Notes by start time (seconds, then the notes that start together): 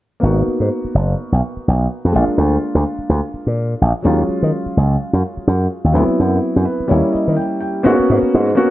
0.20 G#1 A#3 B3 D#4
0.24 F#4
0.48 muted slap bass stroke
0.60 G#2
0.84 muted slap bass stroke
0.95 F#1
1.32 B1
1.57 muted slap bass stroke
1.68 B1
2.05 F2
2.12 A#1 G#3 A#3 D4 F4
2.38 D2
2.75 D2
2.99 muted slap bass stroke
3.09 D2
3.34 muted slap bass stroke
3.47 A#2
3.81 A#1
4.02 D#2 F#3 G#3 C#4 F4
4.29 muted slap bass stroke
4.43 D#3
4.66 muted slap bass stroke
4.77 C#2
5.13 F#2
5.37 muted slap bass stroke
5.47 F#2
5.84 D#2
5.92 D2 F#3 B3 C4 E4
6.08 muted slap bass stroke
6.20 F#2
6.56 F#2
6.65 B4
6.80 muted slap bass stroke
6.88 D#2 G3 A#3 C#4 E4 C#5
7.13 D#5, muted slap bass stroke
7.28 D#3
7.37 G5
7.61 G5
7.83 G#2 A#3 B3 C#4 F#4
8.00 muted slap bass stroke
8.10 G#2
8.23 muted slap bass stroke
8.34 G#2
8.55 A#3 B3 C#4 F#4